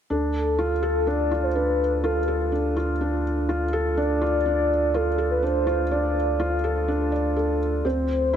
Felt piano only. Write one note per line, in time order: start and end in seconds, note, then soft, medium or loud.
0.10 0.33 D4 medium
0.59 0.72 F4 medium
0.83 1.06 A4 medium
1.07 1.30 D4 medium
1.31 1.45 F4 medium
1.55 1.78 D4 medium
2.04 2.18 F4 medium
2.28 2.51 A4 medium
2.52 2.75 D4 medium
2.76 2.90 F4 medium
3.01 3.24 D4 medium
3.49 3.63 F4 medium
3.73 3.96 A4 medium
3.97 4.20 D4 medium
4.22 4.35 F4 medium
4.46 4.69 D4 medium
4.94 5.08 F4 medium
5.18 5.41 A4 medium
5.43 5.66 D4 medium
5.67 5.81 F4 medium
5.91 6.14 D4 medium
6.40 6.53 F4 medium
6.64 6.87 A4 medium
6.88 7.11 D4 medium
7.12 7.35 D5 medium
7.36 7.59 A4 medium
7.85 8.08 C4 medium
8.33 8.37 E4 medium